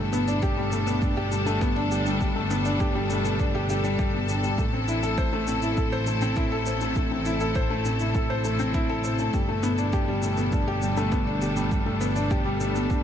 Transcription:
Already playing: double bass section G1, string section B2 E4 A4
0.00 felt piano A3, string section D4
0.08 string section G3
0.13 felt piano B3, shaker
0.28 felt piano D4, shaker
0.42 felt piano G4, kick, shaker
0.57 felt piano G3
0.72 felt piano A3, shaker
0.87 felt piano B3, shaker
1.02 felt piano D4, kick, shaker
1.17 felt piano G4
1.31 felt piano G3, shaker
1.46 felt piano A3, shaker
1.61 felt piano B3, kick, shaker
1.76 felt piano D4
1.91 felt piano G4, shaker
2.06 felt piano G3, shaker
2.21 felt piano G3, kick, shaker
2.36 felt piano A3
2.50 felt piano B3, shaker
2.65 felt piano D4, shaker
2.80 felt piano G4, kick, shaker
2.95 felt piano G3
3.10 felt piano A3, shaker
3.25 felt piano B3, shaker
3.40 felt piano D4, kick, shaker
3.55 felt piano G4
3.69 felt piano G4, shaker
3.84 felt piano G3, shaker
3.99 felt piano G4, kick, shaker
4.14 felt piano B3
4.29 felt piano D4, shaker
4.43 felt piano G3, shaker
4.58 double bass section A1, string section C3, felt piano A3, kick, shaker
4.68 string section E4
4.73 felt piano C4
4.85 string section A3, felt piano E4, shaker
5.03 felt piano A4, shaker
5.18 felt piano C5, kick, shaker
5.33 felt piano A3
5.47 felt piano C4, shaker
5.62 felt piano E4, shaker
5.77 felt piano A4, kick, shaker
5.92 felt piano C5
6.07 felt piano A3, shaker
6.21 felt piano C4, shaker
6.36 felt piano E4, kick, shaker
6.52 felt piano A4
6.66 felt piano C5, shaker
6.81 felt piano A3, shaker
6.96 felt piano A3, kick, shaker
7.11 felt piano C4
7.25 felt piano E4, shaker
7.40 felt piano A4, shaker
7.55 felt piano C5, kick, shaker
7.70 felt piano A3
7.85 felt piano C4, shaker
8.00 felt piano E4, shaker
8.15 felt piano A4, kick, shaker
8.30 felt piano C5
8.44 felt piano A3, shaker
8.59 felt piano C4, shaker
8.74 felt piano E4, kick, shaker
8.89 felt piano A4
9.04 felt piano C5, shaker
9.19 felt piano A3, shaker
9.34 double bass section G1, string section B2, felt piano G3, kick, shaker
9.48 felt piano A3
9.53 string section G3
9.63 felt piano B3, shaker
9.69 string section D4
9.78 felt piano D4, shaker
9.93 felt piano G4, kick, shaker
10.08 felt piano G3
10.22 felt piano A3, shaker
10.37 felt piano B3, shaker
10.52 felt piano D4, kick, shaker
10.68 felt piano G4
10.82 felt piano G3, shaker
10.97 felt piano A3, shaker
11.12 felt piano B3, kick, shaker
11.27 felt piano D4
11.42 felt piano G4, shaker
11.56 felt piano G3, shaker
11.71 felt piano G3, kick, shaker
11.86 felt piano A3
12.01 felt piano B3, shaker
12.16 felt piano D4, shaker
12.31 felt piano G4, kick, shaker
12.45 felt piano G3
12.60 felt piano A3, shaker
12.75 felt piano B3, shaker
12.90 felt piano D4, kick, shaker

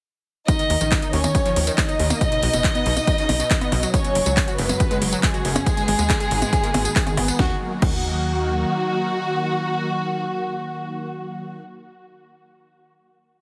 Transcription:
0.48 synth pluck D#3, violin section D#4 D#5, kick, closed hi-hat, tambourine
0.59 synth pluck D#3, closed hi-hat, tambourine
0.70 analog synth bass D#2, synth pluck D#3, open hi-hat
0.81 analog synth bass A#1, synth pluck D#3, closed hi-hat, tambourine
0.92 synth pluck D#3, kick, clap, closed hi-hat, tambourine
1.02 synth pluck D#4, closed hi-hat, tambourine
1.13 synth pluck D#2, analog synth bass D#2, violin section C#4 C#5, open hi-hat
1.24 synth pluck D#3, closed hi-hat, tambourine, percussion blips
1.35 kick, closed hi-hat, tambourine
1.45 synth pluck F3, closed hi-hat, tambourine
1.56 analog synth bass D#2, synth pluck D#3, open hi-hat
1.67 synth pluck D#3, closed hi-hat, tambourine
1.78 synth pluck D#3, violin section D#4 D#5, kick, clap, closed hi-hat, tambourine
1.89 synth pluck D#4, closed hi-hat, tambourine
1.99 synth pluck D#2, analog synth bass D#2, open hi-hat
2.10 synth pluck A#3, closed hi-hat, tambourine, percussion blips
2.21 synth pluck B2, kick, closed hi-hat, tambourine
2.32 synth pluck B2, closed hi-hat, tambourine
2.43 analog synth bass B1, synth pluck B2, open hi-hat
2.53 analog synth bass F#1, synth pluck B2, closed hi-hat, tambourine
2.64 kick, clap, closed hi-hat, tambourine
2.75 synth pluck B3, closed hi-hat, tambourine
2.86 analog synth bass B1, synth pluck B2, open hi-hat
2.97 synth pluck B2, closed hi-hat, tambourine, percussion blips
3.07 synth pluck B2, kick, closed hi-hat, tambourine
3.18 synth pluck C#3, closed hi-hat, tambourine
3.29 analog synth bass B1, synth pluck B2, open hi-hat, percussion blips
3.40 synth pluck B2, closed hi-hat, tambourine
3.50 synth pluck B2, kick, clap, closed hi-hat, tambourine
3.61 synth pluck B3, closed hi-hat, tambourine, percussion blips
3.72 analog synth bass B1, synth pluck B2, open hi-hat, percussion blips
3.83 synth pluck F#3, closed hi-hat, tambourine
3.94 analog synth pad C#3 F#3 G#3 F#4, synth pluck F#3, violin section C#4 C#5, kick, closed hi-hat, tambourine
4.04 synth pluck F#3, closed hi-hat, tambourine
4.15 analog synth bass F#1, synth pluck F#3, open hi-hat
4.26 analog synth bass C#2, synth pluck F#3, closed hi-hat, tambourine
4.37 synth pluck F#3, kick, clap, closed hi-hat, tambourine
4.48 synth pluck F#4, closed hi-hat, tambourine
4.58 analog synth bass F#1, synth pluck F#2, violin section B3 B4, open hi-hat
4.69 synth pluck F#3, closed hi-hat, tambourine, percussion blips
4.80 synth pluck F#2, kick, closed hi-hat, tambourine
4.91 synth pluck G#3, closed hi-hat, tambourine
5.02 analog synth bass F#1, synth pluck F#3, open hi-hat
5.12 synth pluck F#3, closed hi-hat, tambourine
5.23 synth pluck F#3, violin section G#3 G#4, kick, clap, closed hi-hat, tambourine
5.34 synth pluck F#4, closed hi-hat, tambourine
5.45 analog synth bass F#1, synth pluck F#2, open hi-hat
5.56 synth pluck C#4, closed hi-hat, tambourine, percussion blips
5.66 analog synth pad D#3 G#3 B3, synth pluck G#3, kick, closed hi-hat, tambourine
5.77 synth pluck G#3, closed hi-hat, tambourine
5.88 analog synth bass G#1, synth pluck G#3, open hi-hat
5.99 analog synth bass D#2, synth pluck G#3, closed hi-hat, tambourine
6.10 synth pluck G#3, kick, clap, closed hi-hat, tambourine
6.20 synth pluck G#4, closed hi-hat, tambourine
6.31 analog synth bass G#1, synth pluck G#2, open hi-hat
6.42 synth pluck G#3, closed hi-hat, tambourine, percussion blips
6.53 synth pluck G#2, kick, closed hi-hat, tambourine
6.63 synth pluck A#3, closed hi-hat, tambourine
6.74 analog synth bass G#1, synth pluck G#2, open hi-hat, percussion blips
6.85 synth pluck G#4, closed hi-hat, tambourine
6.96 synth pluck G#4, kick, clap, closed hi-hat, tambourine
7.07 synth pluck D#3, closed hi-hat, tambourine, percussion blips
7.17 analog synth bass G#1, synth pluck B3, open hi-hat, percussion blips
7.28 synth pluck B3, closed hi-hat, tambourine
7.39 analog synth bass D#2, synth pluck D#3, analog synth pad D#3 F#3 A#3 F#4, violin section F#4, kick, snare
7.82 analog synth bass D#2, synth pluck D#3, violin section F#4, kick, crash

